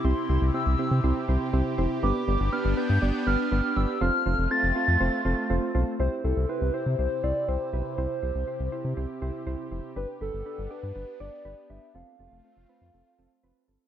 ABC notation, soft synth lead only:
X:1
M:4/4
L:1/8
Q:1/4=121
K:C
V:1 name="Soft synth lead"
c' c' e'3 z3 | d'2 f' g'2 f'2 e' | f'2 a'4- a' z | c A B c c d c2 |
c4 z4 | B A2 B2 d2 e | f6- f z |]